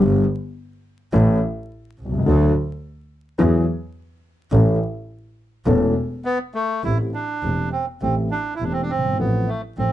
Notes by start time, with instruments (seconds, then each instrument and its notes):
0.00 grand piano G1 G2 D3 G3 B3 G4, double bass G1
1.13 double bass A1, grand piano A1 A2 E3 A3 C#4 A4
1.98 double bass C2
2.05 grand piano B1
2.12 grand piano C2
2.19 grand piano C#2
2.26 grand piano D2 D3 F#3 A3 D4 A4, double bass D2
3.38 grand piano E2 E3 F#3 B3 E4 G#4, double bass E2
4.51 double bass A1, grand piano A1 A2 E3 A3 C#4 A4
5.66 double bass E1, grand piano E1 E2 E3 A3 C#4 A4
6.25 bandoneon B3
6.54 bandoneon A3
6.84 double bass A1, grand piano A1 A2 E3 A3 C4 G4, bandoneon E4
7.14 bandoneon D4
7.43 double bass E1, grand piano E1 E2 E3 A3 C4 G4
7.72 bandoneon C4
8.02 double bass A1, grand piano A1 A2 E3 A3 C4 G4, bandoneon C4
8.31 bandoneon D4
8.55 bandoneon E4
8.60 double bass E1, grand piano E1 E2 E3 A3 C4 G4, bandoneon D4
8.72 bandoneon C4
8.82 bandoneon D4
8.90 double bass G1, bandoneon C4
8.98 grand piano F#1
9.05 grand piano G1
9.12 grand piano G#1
9.19 grand piano A1 A2 F3 A3 C4 A4, double bass A1, bandoneon B3
9.48 bandoneon A3
9.77 double bass A1, grand piano A1 A2 F3 A3 C4 A4, bandoneon C4